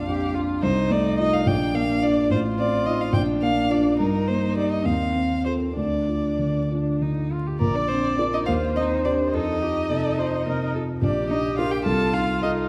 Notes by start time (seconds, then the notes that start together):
Already playing: A#1 F2 D4 F5
0.07 F2 G4
0.34 D4 F4
0.62 C2 D#4 C5
0.90 A3 D5
1.18 D#4 F4 D#5
1.33 F5
1.46 A#1 D4 G5
1.74 A#3 F5
2.02 D4 F4 D5
2.29 A1 F4 C5
2.58 C4 D5
2.86 D#4 F4 D#5
3.01 F5
3.13 A#1 D4 G5
3.42 A#3 F5
3.70 D4 F4 D5
3.97 G2 D#4 A#4
4.28 A#3 C5
4.56 D#4 G4 D5
4.71 D#5
4.85 D#2 C4 F5
5.15 C4
5.45 F4 A4 C5
5.75 D2 D4 D5
6.08 F4
6.39 D3
6.70 D4 F4
7.01 D3 D#4
7.31 F4
7.47 G4
7.59 A#1 A#3 A#4 D5
7.73 D4 D5
7.88 C4 D4 C5
8.18 D4 F4 A#4 D5
8.33 D#4 D#5
8.46 D#2 F4 C5 F5
8.76 C4 D#4 D#5
9.05 D4 G4 C5 D5
9.33 F2 D#4 A4 D#5
9.61 F4 G4
9.89 C3 A4
10.18 F4 C5
10.46 C3 A#4
10.74 F4 A4
11.02 A#1 D4 G4 D5
11.29 D4 D#4 D#5
11.57 F4 A#4 F5
11.70 G4 G5
11.84 C2 F4 A4 A5
12.13 D#4 F4 F5
12.41 D#4 F4 A4 D#5